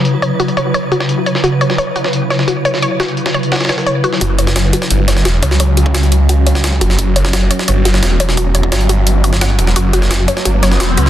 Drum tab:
HH |x---x---x-x-x---x---x---x---x---|x---x---x---x---x---x---x---x---|x---x-x-x-x-x-x-xxxxx---x---x---|x---x---x---x---x---x---x---x---|
SD |----------------------o-------o-|------o-------o-----o-o-------o-|----o-----o-----ooooo-o-------o-|------o-o-----o-----o-o-o-----o-|
BD |--------------------------------|--------------------------------|--------------------------------|o-----o---------------------o---|

HH |x---x---x-x-x---x---x---x---x---|x---x---x---x---x---x---x---x---|x---x---x-x-x---x---x---x---x---|x---x---x---x---x---x---x---x---|
SD |--------o-------------o-o-----o-|------o-o-----o-----o-o-o-----o-|--------o-------------o-o-----o-|------o-o-----o-----o-o-o-----o-|
BD |o-----o---------------o---o-o---|o-----o---------------------o---|o-----o---------------o---o-o---|o-------o-------o-------o-------|